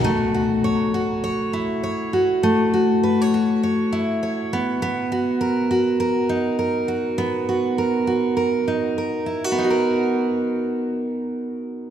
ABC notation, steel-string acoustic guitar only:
X:1
M:4/4
L:1/16
Q:"Swing 16ths" 1/4=101
K:B
V:1 name="Steel-string acoustic guitar"
=A,2 F2 c2 F2 c2 E2 c2 F2 | =A,2 F2 B c F2 c2 E2 c2 B,2 | B,2 F2 A2 F2 A2 D2 A2 F2 | B,2 F2 A2 F2 A2 D2 A2 E F |
[B,DFA]16 |]